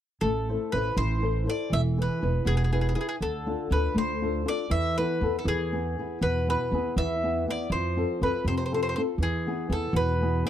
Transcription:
0.21 0.55 A1 medium
0.21 0.72 A3 soft
0.21 0.74 A4 medium
0.49 0.72 E4 soft
0.49 0.72 A4 soft
0.49 0.72 C5 soft
0.72 0.89 A1 medium
0.72 1.14 E4 soft
0.72 1.14 A4 soft
0.72 0.97 B4 medium
0.72 1.14 C5 soft
0.96 1.46 A1 medium
0.96 1.46 E3 medium
0.96 1.45 C5 medium
1.22 1.45 E4 soft
1.22 1.46 A4 soft
1.22 1.46 C5 soft
1.46 1.66 E4 soft
1.46 1.67 A4 soft
1.46 1.67 C5 soft
1.46 1.71 D5 medium
1.70 2.05 E1 medium
1.70 2.20 E3 medium
1.70 1.80 E5 medium
1.98 2.21 E4 soft
1.98 2.21 G#4 soft
1.98 2.21 B4 soft
1.98 2.45 B4 medium
2.22 2.38 E1 medium
2.22 2.63 E4 soft
2.22 2.63 G#4 soft
2.22 2.63 B4 soft
2.45 2.95 E1 medium
2.45 2.95 B2 medium
2.45 2.55 G#4 medium
2.57 2.63 G#4 soft
2.64 2.71 G#4 soft
2.72 2.94 E4 soft
2.72 2.79 G#4 soft
2.72 2.94 G#4 soft
2.72 2.95 B4 soft
2.81 2.87 G#4 soft
2.89 2.94 G#4 soft
2.95 3.15 E4 soft
2.95 3.00 G#4 soft
2.95 3.15 G#4 soft
2.95 3.16 B4 soft
3.01 3.07 G#4 soft
3.09 3.15 G#4 medium
3.20 3.54 D2 medium
3.20 3.70 D3 medium
3.20 3.69 A4 medium
3.46 3.70 D4 soft
3.46 3.71 F4 soft
3.46 3.72 A4 soft
3.71 3.86 D2 medium
3.71 4.12 D4 soft
3.71 4.12 F4 soft
3.71 4.13 A4 medium
3.71 3.96 B4 medium
3.94 4.44 D2 medium
3.94 4.44 A3 medium
3.94 4.48 C5 medium
4.22 4.44 D4 soft
4.22 4.44 F4 soft
4.22 4.45 A4 soft
4.45 4.65 D4 soft
4.45 4.65 F4 soft
4.45 4.65 A4 soft
4.45 4.69 D5 medium
4.70 5.03 E2 medium
4.70 5.19 E3 medium
4.70 4.96 E5 medium
4.98 5.20 B3 soft
4.98 5.21 E4 soft
4.98 5.22 A4 soft
4.98 5.36 B4 medium
5.21 5.37 E2 medium
5.21 5.40 B3 soft
5.21 5.41 E4 soft
5.21 5.41 A4 soft
5.39 5.45 A4 soft
5.44 5.94 E2 medium
5.44 5.94 E3 medium
5.44 6.18 G#4 medium
5.72 5.97 B3 soft
5.72 5.98 E4 soft
5.72 5.98 G#4 soft
5.98 6.39 B3 soft
5.98 6.39 E4 soft
5.98 6.39 G#4 soft
6.21 6.54 E2 medium
6.21 6.70 B2 medium
6.21 6.47 B4 medium
6.48 6.72 B3 soft
6.48 6.72 E4 soft
6.48 6.73 G#4 soft
6.48 6.94 B4 medium
6.72 6.87 E2 medium
6.72 7.13 B3 soft
6.72 7.14 E4 soft
6.72 7.14 G#4 soft
6.96 7.45 E2 medium
6.96 7.46 E3 medium
6.96 7.44 E5 medium
7.23 7.46 B3 soft
7.23 7.47 E4 soft
7.23 7.47 G#4 soft
7.48 7.66 B3 soft
7.48 7.67 E4 soft
7.48 7.67 G#4 soft
7.48 7.71 D5 medium
7.70 8.03 F2 medium
7.70 8.21 F3 medium
7.70 8.23 C5 medium
7.97 8.21 C4 soft
7.97 8.20 F4 soft
7.97 8.21 A4 soft
8.21 8.37 F2 medium
8.21 8.62 C4 soft
8.21 8.62 F4 soft
8.21 8.63 A4 medium
8.21 8.44 B4 medium
8.44 8.93 F2 medium
8.44 8.95 C3 medium
8.44 8.54 C5 medium
8.57 8.63 C5 medium
8.66 8.71 C5 soft
8.72 8.96 C4 soft
8.72 8.97 F4 soft
8.72 8.97 A4 medium
8.72 8.79 C5 soft
8.83 8.87 C5 medium
8.89 8.94 C5 soft
8.96 9.16 C4 soft
8.96 9.16 F4 soft
8.96 9.16 A4 soft
8.96 9.01 C5 medium
9.18 9.52 E2 medium
9.18 9.69 E3 medium
9.23 9.73 G#4 medium
9.47 9.69 B3 soft
9.47 9.70 E4 soft
9.47 9.69 G#4 soft
9.70 9.85 E2 medium
9.70 10.11 B3 soft
9.70 10.11 E4 soft
9.70 10.11 G#4 medium
9.70 9.96 A4 medium
9.93 10.42 E2 medium
9.93 10.44 B2 medium
9.93 10.46 B4 medium
10.21 10.43 B3 soft
10.21 10.44 E4 soft
10.21 10.44 G#4 soft
10.45 10.50 B3 soft
10.45 10.50 E4 soft
10.45 10.50 G#4 soft
10.45 10.50 D5 medium

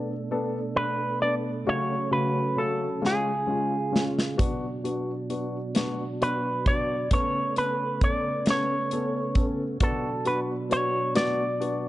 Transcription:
0.00 1.65 B2 medium
0.00 2.99 A3 medium
0.00 0.12 B3 medium
0.00 0.12 D4 soft
0.00 1.65 D4 medium
0.00 0.12 A4 medium
0.31 0.57 B3 medium
0.31 0.58 D4 medium
0.31 0.58 A4 medium
0.76 1.02 B3 medium
0.76 1.03 D4 medium
0.76 1.03 A4 medium
0.76 1.22 B4 medium
1.22 1.48 B3 medium
1.22 1.48 D4 soft
1.22 1.48 A4 medium
1.22 1.34 D5 medium
1.65 3.01 C#3 medium
1.65 1.93 C#3 medium
1.65 3.01 F#3 soft
1.65 1.93 A3 medium
1.65 3.01 C#4 medium
1.65 1.93 C#4 medium
1.65 1.93 F#4 medium
1.65 2.12 C#5 medium
2.10 2.37 C#3 medium
2.10 2.38 A3 medium
2.10 2.37 C#4 medium
2.10 2.38 F#4 medium
2.10 2.59 B4 medium
2.56 2.83 C#3 medium
2.56 2.83 A3 soft
2.56 2.83 C#4 soft
2.56 2.83 F#4 medium
2.56 3.05 A4 medium
3.02 4.37 C#3 medium
3.02 3.28 G#3 medium
3.02 4.38 G#3 soft
3.02 3.29 C#4 medium
3.02 3.28 F4 medium
3.02 4.38 F4 medium
3.02 snare soft
3.06 4.03 G#4 medium
3.47 3.74 G#3 medium
3.47 3.74 C#4 medium
3.47 3.74 F4 medium
3.92 4.19 G#3 medium
3.92 4.19 C#4 medium
3.92 4.19 F4 medium
3.92 snare medium
4.19 snare medium
4.37 7.09 B2 medium
4.37 7.08 F#3 soft
4.37 4.64 B3 medium
4.37 4.65 D4 medium
4.37 7.08 D4 medium
4.37 4.65 F#4 medium
4.37 kick medium
4.37 closed hi-hat medium
4.84 5.11 B3 medium
4.84 5.10 D4 soft
4.84 5.10 F#4 medium
4.84 closed hi-hat soft
5.30 5.56 B3 soft
5.30 5.56 D4 soft
5.30 5.56 F#4 medium
5.30 closed hi-hat soft
5.75 6.01 B3 medium
5.75 6.01 D4 medium
5.75 6.02 F#4 medium
5.75 snare medium
5.75 closed hi-hat medium
6.21 6.47 B3 medium
6.21 6.47 D4 soft
6.21 6.47 F#4 medium
6.21 6.67 B4 medium
6.21 closed hi-hat soft
6.66 6.92 B3 medium
6.66 6.93 D4 medium
6.66 6.92 F#4 medium
6.66 7.13 D5 medium
6.66 kick medium
6.66 closed hi-hat soft
7.11 9.78 C#3 medium
7.11 9.78 A3 soft
7.11 7.37 B3 medium
7.11 9.78 B3 medium
7.11 7.38 C#4 medium
7.11 7.38 A4 medium
7.11 7.58 C#5 medium
7.11 kick medium
7.11 closed hi-hat medium
7.56 7.83 B3 medium
7.56 7.82 C#4 medium
7.56 7.83 A4 medium
7.56 8.03 B4 medium
7.56 closed hi-hat soft
8.01 8.27 B3 medium
8.01 8.27 C#4 soft
8.01 8.27 A4 medium
8.01 8.49 D5 medium
8.01 kick medium
8.01 closed hi-hat soft
8.46 8.72 B3 medium
8.46 8.72 C#4 medium
8.46 8.73 A4 medium
8.46 snare medium
8.46 closed hi-hat medium
8.50 9.45 C#5 medium
8.91 9.17 B3 medium
8.91 9.17 C#4 medium
8.91 9.18 A4 medium
8.91 closed hi-hat soft
9.35 9.62 B3 medium
9.35 9.62 C#4 medium
9.35 9.62 A4 medium
9.35 kick medium
9.35 closed hi-hat soft
9.80 11.89 B2 medium
9.80 11.89 F#3 medium
9.80 10.06 B3 medium
9.80 10.06 D4 medium
9.80 11.89 D4 medium
9.80 10.06 F#4 medium
9.80 10.28 A4 medium
9.80 kick medium
9.80 closed hi-hat medium
10.25 10.51 B3 medium
10.25 10.51 D4 medium
10.25 10.51 F#4 medium
10.25 10.39 B4 medium
10.25 closed hi-hat soft
10.70 10.96 B3 medium
10.70 10.96 D4 medium
10.70 10.96 F#4 medium
10.70 11.13 C#5 medium
10.70 closed hi-hat soft
11.15 11.41 B3 medium
11.15 11.41 D4 medium
11.15 11.41 F#4 medium
11.15 11.89 D5 medium
11.15 snare medium
11.15 closed hi-hat medium
11.60 11.86 B3 medium
11.60 11.86 D4 medium
11.60 11.86 F#4 medium
11.60 closed hi-hat soft

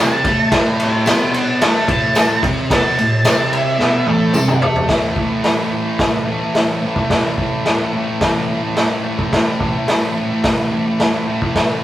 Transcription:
0.00 0.24 C3 loud
0.00 0.24 C4 loud
0.00 0.53 A5 loud
0.25 0.52 A3 medium
0.25 0.52 A4 loud
0.25 kick loud
0.25 ride medium
0.52 1.06 A2 medium
0.52 1.06 A3 loud
0.52 kick medium
0.52 snare loud
0.52 ride medium
0.80 1.08 E5 medium
0.80 ride medium
0.84 1.08 C6 loud
1.06 1.60 B2 medium
1.06 1.61 B3 loud
1.06 1.33 E5 medium
1.06 1.34 C6 loud
1.06 snare loud
1.06 ride loud
1.06 tambourine medium
1.34 1.61 A5 medium
1.34 1.62 D6 medium
1.34 ride medium
1.61 1.87 A3 loud
1.61 1.88 A4 loud
1.61 1.87 A5 medium
1.61 1.88 D6 loud
1.61 snare loud
1.61 ride loud
1.88 2.42 A2 loud
1.88 2.43 A3 loud
1.88 2.41 A5 medium
1.88 kick loud
1.88 ride medium
2.15 snare loud
2.15 ride medium
2.15 tambourine loud
2.43 2.69 C3 loud
2.43 2.70 C4 medium
2.43 kick loud
2.43 ride medium
2.70 2.97 B2 medium
2.70 2.98 B3 loud
2.70 3.51 A5 loud
2.70 kick loud
2.70 snare loud
2.70 ride loud
2.99 3.20 A2 medium
2.99 ride medium
3.25 3.78 C3 medium
3.25 3.79 C4 loud
3.25 snare loud
3.25 ride loud
3.25 tambourine loud
3.53 4.06 E5 loud
3.53 ride medium
3.79 4.05 B2 loud
3.79 4.06 B3 loud
3.79 snare medium
4.07 4.33 A2 loud
4.07 4.34 A3 loud
4.07 4.60 A4 loud
4.07 high tom medium
4.33 4.61 C3 medium
4.33 4.61 C4 loud
4.33 mid tom medium
4.33 tambourine loud
4.48 mid tom medium
4.61 4.88 A3 medium
4.61 4.89 A4 loud
4.61 floor tom loud
4.76 floor tom medium
4.88 5.15 A2 medium
4.88 5.17 E3 medium
4.88 kick loud
4.88 snare loud
4.88 open hi-hat soft
4.92 5.19 A3 medium
5.16 5.43 A2 medium
5.16 5.34 E3 medium
5.16 kick medium
5.20 5.30 A3 medium
5.30 5.48 A3 medium
5.34 5.46 E3 medium
5.44 5.70 A2 medium
5.44 5.60 E3 medium
5.44 snare medium
5.44 open hi-hat soft
5.48 5.55 A3 medium
5.56 5.74 A3 medium
5.60 5.72 E3 medium
5.70 6.26 A2 medium
5.70 5.89 E3 medium
5.75 5.85 A3 medium
5.85 6.30 A3 medium
5.89 6.28 E3 medium
5.99 kick loud
5.99 snare loud
5.99 open hi-hat soft
6.27 6.53 A2 medium
6.27 6.44 E3 medium
6.27 6.40 A3 medium
6.41 6.58 A3 medium
6.45 6.55 E3 medium
6.54 6.81 A2 medium
6.54 6.84 E3 medium
6.54 snare medium
6.54 open hi-hat soft
6.58 6.86 A3 loud
6.81 7.08 A2 medium
6.81 6.99 E3 medium
6.86 6.95 A3 medium
6.96 7.11 E3 medium
6.96 7.13 A3 medium
6.96 kick medium
7.09 7.36 A2 medium
7.09 7.39 E3 medium
7.09 kick medium
7.09 snare loud
7.09 open hi-hat soft
7.13 7.41 A3 medium
7.37 7.66 A2 medium
7.37 7.56 E3 medium
7.37 kick medium
7.41 7.51 A3 medium
7.52 7.70 A3 medium
7.56 7.68 E3 medium
7.66 7.94 A2 medium
7.66 7.84 E3 medium
7.66 snare loud
7.66 open hi-hat soft
7.71 7.80 A3 medium
7.80 7.96 E3 medium
7.80 7.98 A3 medium
7.94 8.50 A2 medium
7.94 8.12 E3 medium
7.98 8.07 A3 medium
8.07 8.54 A3 medium
8.12 8.52 E3 medium
8.21 kick medium
8.21 snare loud
8.21 open hi-hat soft
8.50 8.76 A2 medium
8.50 8.67 E3 medium
8.54 8.62 A3 medium
8.63 8.79 A3 medium
8.67 8.78 E3 soft
8.76 9.04 A2 medium
8.76 9.06 E3 medium
8.76 9.08 A3 medium
8.76 snare medium
8.76 open hi-hat soft
9.04 9.32 A2 medium
9.04 9.22 E3 medium
9.08 9.18 A3 medium
9.18 9.36 A3 medium
9.18 kick medium
9.22 9.34 E3 medium
9.32 9.60 A2 medium
9.32 9.62 E3 medium
9.32 kick medium
9.32 snare loud
9.32 open hi-hat soft
9.36 9.64 A3 medium
9.60 9.87 A2 medium
9.60 9.77 E3 medium
9.60 kick medium
9.65 9.73 A3 medium
9.74 9.89 E3 medium
9.74 9.91 A3 medium
9.87 10.16 A2 medium
9.87 10.06 E3 medium
9.87 10.02 A3 medium
9.87 snare loud
9.87 open hi-hat soft
10.02 10.20 A3 medium
10.06 10.18 E3 medium
10.16 10.72 A2 medium
10.16 10.33 E3 medium
10.16 10.29 A3 medium
10.30 10.76 A3 medium
10.34 10.74 E3 medium
10.44 kick loud
10.44 snare loud
10.44 open hi-hat medium
10.72 11.00 A2 medium
10.72 10.90 E3 medium
10.77 10.86 A3 medium
10.86 11.04 A3 medium
10.90 11.02 E3 medium
11.00 11.28 A2 medium
11.00 11.30 E3 loud
11.00 snare medium
11.00 open hi-hat soft
11.04 11.32 A3 medium
11.28 11.56 A2 medium
11.28 11.46 E3 medium
11.32 11.42 A3 medium
11.42 11.60 A3 medium
11.42 kick medium
11.47 11.58 E3 medium
11.56 11.84 A2 medium
11.56 11.84 E3 medium
11.56 kick medium
11.56 snare loud
11.56 open hi-hat soft
11.61 11.84 A3 loud

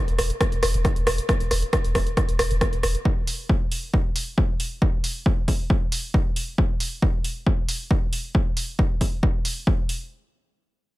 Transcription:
0.08 0.18 E1 medium
0.08 closed hi-hat medium
0.19 0.30 E1 loud
0.19 cross-stick medium
0.19 open hi-hat loud
0.30 closed hi-hat medium
0.41 kick loud
0.41 cross-stick loud
0.41 closed hi-hat medium
0.52 0.62 E1 medium
0.52 closed hi-hat medium
0.63 0.74 E1 loud
0.63 cross-stick medium
0.63 open hi-hat loud
0.74 0.85 E1 medium
0.74 closed hi-hat medium
0.85 kick loud
0.85 cross-stick medium
0.85 closed hi-hat medium
0.96 1.06 E1 medium
0.96 closed hi-hat medium
1.07 1.18 E1 loud
1.07 cross-stick loud
1.07 open hi-hat loud
1.18 closed hi-hat medium
1.29 kick loud
1.29 cross-stick loud
1.29 closed hi-hat medium
1.40 1.50 E1 medium
1.40 closed hi-hat medium
1.51 1.62 E1 loud
1.51 cross-stick medium
1.51 open hi-hat loud
1.73 kick loud
1.73 cross-stick loud
1.73 closed hi-hat medium
1.85 1.94 E1 medium
1.85 closed hi-hat medium
1.95 2.06 E1 loud
1.95 kick medium
1.95 cross-stick medium
1.95 open hi-hat medium
2.07 closed hi-hat medium
2.17 kick loud
2.17 cross-stick medium
2.17 closed hi-hat medium
2.29 2.39 E1 medium
2.29 closed hi-hat medium
2.39 2.50 E1 loud
2.39 cross-stick loud
2.39 open hi-hat loud
2.51 2.61 E1 medium
2.51 closed hi-hat medium
2.61 kick loud
2.61 cross-stick loud
2.61 closed hi-hat medium
2.73 2.83 E1 medium
2.73 closed hi-hat medium
2.83 2.95 E1 loud
2.83 cross-stick medium
2.83 open hi-hat loud
2.95 closed hi-hat soft
3.05 kick loud
3.27 open hi-hat loud
3.49 kick loud
3.72 open hi-hat medium
3.94 kick loud
4.16 open hi-hat loud
4.38 kick loud
4.60 open hi-hat loud
4.82 kick loud
5.04 open hi-hat loud
5.26 kick loud
5.48 kick medium
5.48 open hi-hat medium
5.70 kick loud
5.92 open hi-hat loud
6.14 kick loud
6.36 open hi-hat medium
6.58 kick loud
6.80 open hi-hat loud
7.02 kick loud
7.24 open hi-hat medium
7.46 kick loud
7.69 open hi-hat loud
7.91 kick loud
8.13 open hi-hat medium
8.35 kick loud
8.57 open hi-hat loud
8.79 kick loud
9.01 kick medium
9.01 open hi-hat medium
9.23 kick loud
9.45 open hi-hat loud
9.67 kick loud
9.89 open hi-hat medium

